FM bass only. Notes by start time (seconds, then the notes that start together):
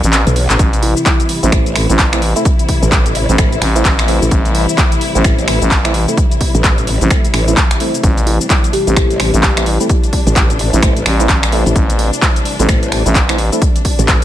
0.04 A1
0.59 A1
1.43 A1
1.90 A1
3.29 A1
3.62 A1
3.85 A1
4.31 A1
5.15 A1
5.62 A1
7.01 A1
8.04 A1
8.87 A1
9.34 A1
10.73 A1
11.06 A1
11.29 A1
11.76 A1
12.59 A1
13.06 A1